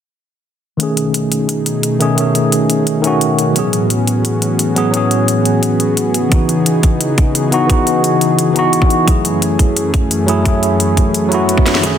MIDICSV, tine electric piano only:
0, 0, Header, 1, 2, 480
1, 0, Start_track
1, 0, Tempo, 344828
1, 1114, Time_signature, 4, 2, 24, 8
1, 16678, End_track
2, 0, Start_track
2, 0, Title_t, "Tine electric piano"
2, 0, Program_c, 0, 4
2, 1074, Note_on_c, 0, 51, 65
2, 1101, Note_on_c, 0, 57, 59
2, 1128, Note_on_c, 0, 61, 61
2, 1155, Note_on_c, 0, 68, 72
2, 1335, Control_c, 0, 64, 127
2, 2745, Note_off_c, 0, 51, 0
2, 2758, Note_off_c, 0, 57, 0
2, 2772, Note_off_c, 0, 61, 0
2, 2774, Note_on_c, 0, 51, 82
2, 2785, Note_off_c, 0, 68, 0
2, 2786, Note_on_c, 0, 57, 77
2, 2800, Note_on_c, 0, 61, 75
2, 2813, Note_on_c, 0, 68, 92
2, 2977, Note_off_c, 0, 51, 0
2, 2994, Note_on_c, 0, 51, 72
2, 3001, Note_off_c, 0, 57, 0
2, 3008, Note_off_c, 0, 61, 0
2, 3014, Note_off_c, 0, 68, 0
2, 3020, Note_on_c, 0, 57, 64
2, 3046, Note_on_c, 0, 61, 65
2, 3073, Note_on_c, 0, 68, 75
2, 4177, Note_off_c, 0, 51, 0
2, 4194, Note_on_c, 0, 51, 85
2, 4198, Note_off_c, 0, 57, 0
2, 4211, Note_off_c, 0, 61, 0
2, 4220, Note_on_c, 0, 57, 76
2, 4224, Note_off_c, 0, 68, 0
2, 4247, Note_on_c, 0, 61, 77
2, 4274, Note_on_c, 0, 66, 93
2, 4905, Note_off_c, 0, 51, 0
2, 4914, Note_on_c, 0, 54, 67
2, 4918, Note_off_c, 0, 57, 0
2, 4932, Note_off_c, 0, 61, 0
2, 4940, Note_on_c, 0, 59, 62
2, 4945, Note_off_c, 0, 66, 0
2, 4966, Note_on_c, 0, 61, 64
2, 4971, Control_c, 0, 64, 0
2, 4994, Note_on_c, 0, 68, 75
2, 5197, Control_c, 0, 64, 127
2, 6585, Note_off_c, 0, 54, 0
2, 6598, Note_off_c, 0, 59, 0
2, 6611, Note_off_c, 0, 61, 0
2, 6612, Note_on_c, 0, 54, 84
2, 6625, Note_off_c, 0, 68, 0
2, 6625, Note_on_c, 0, 59, 78
2, 6639, Note_on_c, 0, 61, 80
2, 6652, Note_on_c, 0, 68, 93
2, 6818, Note_off_c, 0, 54, 0
2, 6834, Note_on_c, 0, 54, 71
2, 6841, Note_off_c, 0, 59, 0
2, 6847, Note_off_c, 0, 61, 0
2, 6854, Note_off_c, 0, 68, 0
2, 6861, Note_on_c, 0, 59, 67
2, 6887, Note_on_c, 0, 61, 66
2, 6914, Note_on_c, 0, 68, 79
2, 8025, Note_off_c, 0, 54, 0
2, 8039, Note_off_c, 0, 59, 0
2, 8051, Note_off_c, 0, 61, 0
2, 8065, Note_off_c, 0, 68, 0
2, 8571, Control_c, 0, 64, 0
2, 8755, Note_on_c, 0, 52, 67
2, 8781, Note_on_c, 0, 59, 61
2, 8798, Control_c, 0, 64, 127
2, 8808, Note_on_c, 0, 63, 61
2, 8835, Note_on_c, 0, 66, 74
2, 10425, Note_off_c, 0, 52, 0
2, 10439, Note_off_c, 0, 59, 0
2, 10452, Note_off_c, 0, 63, 0
2, 10453, Note_on_c, 0, 52, 86
2, 10465, Note_off_c, 0, 66, 0
2, 10466, Note_on_c, 0, 59, 81
2, 10479, Note_on_c, 0, 63, 79
2, 10493, Note_on_c, 0, 66, 95
2, 10658, Note_off_c, 0, 52, 0
2, 10675, Note_on_c, 0, 52, 75
2, 10681, Note_off_c, 0, 59, 0
2, 10687, Note_off_c, 0, 63, 0
2, 10694, Note_off_c, 0, 66, 0
2, 10700, Note_on_c, 0, 59, 68
2, 10727, Note_on_c, 0, 63, 67
2, 10754, Note_on_c, 0, 66, 81
2, 11857, Note_off_c, 0, 52, 0
2, 11874, Note_on_c, 0, 52, 89
2, 11878, Note_off_c, 0, 59, 0
2, 11892, Note_off_c, 0, 63, 0
2, 11900, Note_on_c, 0, 59, 81
2, 11905, Note_off_c, 0, 66, 0
2, 11927, Note_on_c, 0, 63, 80
2, 11953, Note_on_c, 0, 66, 97
2, 12585, Note_off_c, 0, 52, 0
2, 12596, Note_on_c, 0, 54, 70
2, 12598, Note_off_c, 0, 59, 0
2, 12611, Note_off_c, 0, 63, 0
2, 12622, Note_on_c, 0, 57, 65
2, 12624, Note_off_c, 0, 66, 0
2, 12648, Note_on_c, 0, 64, 66
2, 12653, Control_c, 0, 64, 0
2, 12674, Note_on_c, 0, 68, 77
2, 12884, Control_c, 0, 64, 127
2, 14266, Note_off_c, 0, 54, 0
2, 14279, Note_off_c, 0, 57, 0
2, 14291, Note_on_c, 0, 54, 90
2, 14292, Note_off_c, 0, 64, 0
2, 14305, Note_off_c, 0, 68, 0
2, 14305, Note_on_c, 0, 57, 83
2, 14318, Note_on_c, 0, 64, 81
2, 14332, Note_on_c, 0, 68, 99
2, 14494, Note_off_c, 0, 54, 0
2, 14511, Note_on_c, 0, 54, 74
2, 14520, Note_off_c, 0, 57, 0
2, 14527, Note_off_c, 0, 64, 0
2, 14534, Note_off_c, 0, 68, 0
2, 14538, Note_on_c, 0, 57, 67
2, 14564, Note_on_c, 0, 64, 69
2, 14591, Note_on_c, 0, 68, 82
2, 15694, Note_off_c, 0, 54, 0
2, 15711, Note_on_c, 0, 54, 89
2, 15717, Note_off_c, 0, 57, 0
2, 15730, Note_off_c, 0, 64, 0
2, 15738, Note_on_c, 0, 57, 82
2, 15743, Note_off_c, 0, 68, 0
2, 15765, Note_on_c, 0, 64, 82
2, 15791, Note_on_c, 0, 66, 99
2, 16423, Note_off_c, 0, 54, 0
2, 16433, Note_on_c, 0, 51, 68
2, 16437, Note_off_c, 0, 57, 0
2, 16450, Note_off_c, 0, 64, 0
2, 16459, Note_on_c, 0, 57, 64
2, 16463, Note_off_c, 0, 66, 0
2, 16486, Note_on_c, 0, 61, 63
2, 16492, Control_c, 0, 64, 0
2, 16513, Note_on_c, 0, 68, 75
2, 16678, Note_off_c, 0, 51, 0
2, 16678, Note_off_c, 0, 57, 0
2, 16678, Note_off_c, 0, 61, 0
2, 16678, Note_off_c, 0, 68, 0
2, 16678, End_track
0, 0, End_of_file